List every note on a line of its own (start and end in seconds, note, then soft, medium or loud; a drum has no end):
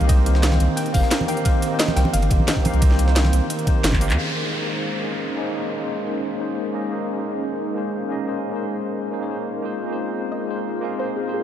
0.00 0.59 C2 loud
0.00 4.14 D#3 medium
0.00 0.07 A#3 loud
0.00 0.08 C4 medium
0.00 4.14 C4 medium
0.00 0.09 D#4 medium
0.00 0.10 G4 medium
0.00 4.14 A#4 medium
0.00 0.11 C5 loud
0.00 1.30 F5 loud
0.00 closed hi-hat soft
0.07 0.30 A#3 medium
0.07 0.32 C4 medium
0.07 0.33 D#4 medium
0.07 0.33 G4 medium
0.07 0.33 C5 loud
0.07 0.79 D#5 loud
0.07 kick loud
0.07 closed hi-hat medium
0.07 ride medium
0.26 closed hi-hat medium
0.26 ride medium
0.32 0.91 A#3 medium
0.32 0.92 C4 medium
0.32 0.93 D#4 medium
0.32 snare soft
0.36 0.93 G4 medium
0.36 0.94 C5 medium
0.43 snare loud
0.43 closed hi-hat medium
0.43 ride medium
0.52 snare medium
0.52 high conga medium
0.60 0.68 C2 loud
0.60 closed hi-hat medium
0.60 ride medium
0.77 0.95 G5 loud
0.77 closed hi-hat medium
0.77 ride medium
0.86 closed hi-hat soft
0.93 1.02 G1 medium
0.93 1.26 A#3 medium
0.93 1.26 C4 medium
0.93 1.26 D#4 medium
0.93 1.27 G4 medium
0.93 1.27 C5 loud
0.93 1.29 F5 loud
0.93 kick loud
0.93 closed hi-hat medium
0.93 open hi-hat medium
1.03 snare soft
1.11 snare loud
1.11 closed hi-hat medium
1.11 ride medium
1.21 high conga medium
1.27 1.43 A#3 loud
1.27 1.43 C4 medium
1.27 1.44 D#4 medium
1.27 1.44 G4 medium
1.27 1.44 F5 loud
1.27 1.36 G5 loud
1.27 open hi-hat medium
1.27 ride medium
1.37 closed hi-hat soft
1.44 1.67 A#3 medium
1.44 1.68 C4 medium
1.44 1.69 D#4 medium
1.44 1.69 G4 medium
1.44 1.70 C5 medium
1.44 1.80 F5 loud
1.44 kick loud
1.44 closed hi-hat medium
1.44 ride medium
1.62 closed hi-hat medium
1.62 ride medium
1.68 2.27 A#3 medium
1.68 2.28 C4 medium
1.68 2.29 D#4 medium
1.73 2.30 G4 medium
1.73 2.31 C5 medium
1.79 1.97 D#5 medium
1.79 snare loud
1.79 closed hi-hat medium
1.79 ride medium
1.88 snare soft
1.88 high conga medium
1.96 2.04 C2 loud
1.96 2.12 G5 loud
1.96 snare medium
1.96 closed hi-hat medium
1.96 ride medium
2.05 high conga medium
2.13 2.29 G1 loud
2.13 2.49 F5 loud
2.13 closed hi-hat medium
2.13 ride medium
2.22 closed hi-hat soft
2.22 ride soft
2.29 2.39 G1 medium
2.29 2.62 A#3 medium
2.29 2.62 C4 medium
2.29 2.63 D#4 medium
2.29 2.63 G4 medium
2.29 2.64 C5 medium
2.29 kick loud
2.29 closed hi-hat medium
2.29 ride medium
2.40 high conga medium
2.48 3.12 D#5 medium
2.48 snare loud
2.48 closed hi-hat medium
2.48 ride medium
2.57 kick medium
2.63 2.79 A#3 loud
2.63 2.80 C4 medium
2.63 2.80 D#4 medium
2.63 2.80 G4 medium
2.63 2.81 F5 loud
2.63 open hi-hat medium
2.63 ride medium
2.63 high conga medium
2.74 3.32 C2 loud
2.74 closed hi-hat soft
2.80 3.03 A#3 medium
2.80 3.05 C4 medium
2.80 3.06 D#4 medium
2.80 3.06 G4 medium
2.80 3.06 C5 medium
2.80 kick loud
2.80 closed hi-hat loud
2.80 ride medium
2.91 snare soft
2.99 closed hi-hat medium
2.99 ride medium
3.04 3.64 A#3 medium
3.04 3.65 C4 medium
3.04 3.65 D#4 medium
3.04 snare soft
3.09 3.66 G4 medium
3.09 3.67 C5 medium
3.16 snare loud
3.16 closed hi-hat medium
3.16 ride medium
3.25 snare medium
3.25 high conga medium
3.33 3.41 C2 loud
3.33 closed hi-hat medium
3.33 ride medium
3.50 closed hi-hat medium
3.50 ride medium
3.59 closed hi-hat soft
3.65 3.98 A#3 medium
3.65 3.99 C4 medium
3.65 3.99 D#4 medium
3.65 3.99 G4 medium
3.65 4.00 C5 loud
3.65 kick loud
3.65 closed hi-hat medium
3.65 ride medium
3.84 4.11 G1 medium
3.84 snare loud
3.84 closed hi-hat medium
3.84 ride medium
3.92 kick medium
3.92 clap medium
3.92 high conga medium
3.99 4.15 A#3 loud
3.99 4.16 C4 medium
3.99 4.16 D#4 medium
3.99 4.16 G4 medium
3.99 4.17 F5 loud
3.99 open hi-hat medium
3.99 ride medium
4.10 4.17 D#2 loud
4.10 clap loud
4.10 closed hi-hat soft
4.16 11.43 G#3 medium
4.16 4.39 A#3 medium
4.16 4.41 C#4 medium
4.16 9.60 C#4 medium
4.16 4.42 D#4 medium
4.16 9.60 D#4 medium
4.16 4.42 G#4 medium
4.16 11.43 A#4 medium
4.16 6.88 C5 medium
4.16 4.42 C5 medium
4.16 downlifter medium
4.40 5.00 A#3 medium
4.40 5.01 C#4 medium
4.40 5.02 D#4 medium
4.45 5.02 G#4 medium
4.45 5.03 C5 medium
5.02 5.35 A#3 medium
5.02 5.35 C#4 medium
5.02 5.35 D#4 medium
5.02 5.36 G#4 medium
5.02 5.36 C5 medium
5.36 5.52 A#3 loud
5.36 5.52 C#4 medium
5.36 5.53 D#4 medium
5.36 5.53 G#4 medium
5.36 5.53 D#5 loud
5.53 5.76 A#3 medium
5.53 5.77 C#4 medium
5.53 5.78 D#4 medium
5.53 5.79 G#4 medium
5.53 5.79 C5 medium
5.77 6.36 A#3 medium
5.77 6.37 C#4 medium
5.77 6.38 D#4 medium
5.82 6.39 G#4 medium
5.82 6.40 C5 medium
6.38 6.71 A#3 medium
6.38 6.72 C#4 medium
6.38 6.72 D#4 medium
6.38 6.72 G#4 medium
6.38 6.73 C5 medium
6.72 6.88 A#3 medium
6.72 6.89 C#4 medium
6.72 6.89 D#4 medium
6.72 6.89 G#4 medium
6.72 6.90 D#5 loud
6.89 7.12 A#3 medium
6.89 7.14 C#4 medium
6.89 7.15 D#4 medium
6.89 7.15 G#4 medium
6.89 7.15 C5 medium
7.13 7.73 A#3 medium
7.13 7.74 C#4 medium
7.13 7.74 D#4 medium
7.18 7.75 G#4 medium
7.18 7.76 C5 medium
7.74 8.07 A#3 medium
7.74 8.08 C#4 medium
7.74 8.08 D#4 medium
7.74 8.09 G#4 medium
7.74 8.09 C5 medium
8.08 8.24 A#3 medium
8.08 8.25 C#4 medium
8.08 8.25 D#4 medium
8.08 8.26 G#4 medium
8.08 8.26 D#5 loud
8.25 8.48 A#3 medium
8.25 8.50 C#4 medium
8.25 8.51 D#4 medium
8.25 8.51 G#4 medium
8.25 8.52 C5 medium
8.49 9.09 A#3 medium
8.49 9.10 C#4 medium
8.49 9.11 D#4 medium
8.54 9.11 G#4 medium
8.54 9.12 C5 medium
9.11 9.18 A#3 medium
9.11 9.19 C#4 medium
9.11 9.19 D#4 medium
9.11 9.19 G#4 medium
9.11 9.20 C5 medium
9.19 9.27 A#3 medium
9.19 9.27 C#4 medium
9.19 9.27 D#4 medium
9.19 9.28 G#4 medium
9.19 9.28 C#5 medium
9.28 9.61 A#3 medium
9.28 9.61 C#4 medium
9.28 9.62 D#4 medium
9.28 9.62 G#4 medium
9.28 9.62 C5 medium
9.62 9.85 A#3 medium
9.62 11.43 C4 medium
9.62 9.86 D#4 medium
9.62 9.87 F4 medium
9.62 11.43 F4 medium
9.62 9.88 G#4 medium
9.62 9.88 C5 medium
9.86 10.46 A#3 medium
9.86 10.46 D#4 medium
9.86 10.47 F4 medium
9.91 10.48 G#4 medium
9.91 10.49 C5 medium
10.32 10.79 D#5 loud
10.47 10.80 A#3 medium
10.47 10.81 D#4 medium
10.47 10.81 F4 medium
10.47 10.81 G#4 medium
10.47 10.82 C5 medium
10.81 10.97 A#3 loud
10.81 10.98 D#4 medium
10.81 10.98 F4 medium
10.81 10.98 G#4 medium
10.81 10.99 F5 loud
10.98 11.21 A#3 medium
10.98 11.23 D#4 medium
10.98 11.24 F4 medium
10.98 11.24 G#4 medium
10.98 11.16 C5 loud
10.98 11.24 C5 medium
11.16 11.33 G#4 medium
11.23 11.43 A#3 medium
11.23 11.43 D#4 medium
11.23 11.43 F4 medium
11.27 11.43 G#4 medium
11.27 11.43 C5 medium
11.34 11.43 G#4 medium